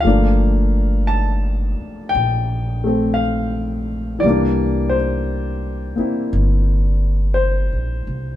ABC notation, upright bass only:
X:1
M:4/4
L:1/8
Q:"Swing" 1/4=57
K:Gdor
V:1 name="Upright bass" clef=bass
G,,,3 z B,,,4 | C,,3 z G,,,2- (3G,,, B,,, C,, |]